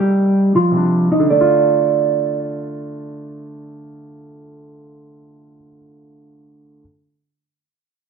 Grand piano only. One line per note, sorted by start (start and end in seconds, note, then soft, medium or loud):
0.00 0.67 C3 medium
0.00 0.70 G3 medium
0.00 0.73 D#4 medium
0.71 1.29 C3 medium
0.71 1.30 G3 soft
0.77 1.32 D4 medium
1.20 5.56 D3 medium
1.30 5.67 A3 medium
1.41 5.78 F4 medium